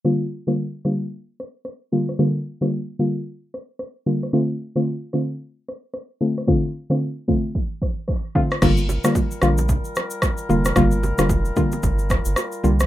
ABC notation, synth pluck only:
X:1
M:4/4
L:1/16
Q:"Swing 16ths" 1/4=112
K:Gm
V:1 name="Synth pluck"
[D,G,B,F]2 z [D,G,B,F] z2 [D,G,B,F]2 z6 [D,G,B,F]2 | [D,G,B,F]2 z [D,G,B,F] z2 [D,G,B,F]2 z6 [D,G,B,F]2 | [D,A,CF]2 z [D,A,CF] z2 [D,A,CF]2 z6 [D,A,CF]2 | [D,A,CF]2 z [D,A,CF] z2 [D,A,CF]2 z6 [D,A,CF]2 |
[D,G,B,F]2 z [D,G,B,F] z2 [D,G,B,F]2 z6 [D,G,B,F]2 | [D,G,B,F]2 z [D,G,B,F] z2 [D,G,B,F]2 z6 [D,G,B,F]2 |]